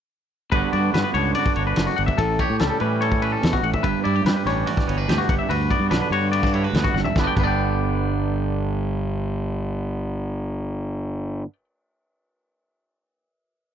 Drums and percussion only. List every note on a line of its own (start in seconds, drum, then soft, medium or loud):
0.52 kick medium
0.52 ride medium
0.73 ride medium
0.94 snare loud
0.94 ride medium
1.15 ride medium
1.35 ride medium
1.46 kick medium
1.55 ride medium
1.76 snare medium
1.76 ride medium
1.88 snare soft
1.98 ride medium
2.08 kick medium
2.18 kick medium
2.18 ride medium
2.39 kick medium
2.39 ride medium
2.59 snare loud
2.59 ride medium
2.80 ride medium
3.02 ride medium
3.12 kick medium
3.22 ride medium
3.43 snare loud
3.43 ride medium
3.53 kick medium
3.64 ride soft
3.74 kick medium
3.84 kick medium
3.84 ride medium
4.05 ride medium
4.26 snare loud
4.26 ride medium
4.47 snare soft
4.47 ride medium
4.67 ride medium
4.77 kick medium
4.77 snare soft
4.89 ride medium
5.09 snare loud
5.09 ride medium
5.20 snare soft
5.29 kick loud
5.29 ride medium
5.51 ride medium
5.71 kick medium
5.71 ride medium
5.91 snare medium
5.91 ride medium
6.12 ride medium
6.33 ride medium
6.43 kick medium
6.43 snare soft
6.54 ride medium
6.74 snare loud
6.74 ride medium
6.84 kick medium
6.96 snare medium
7.05 floor tom medium
7.16 kick medium
7.16 snare medium
7.37 kick medium
7.37 crash medium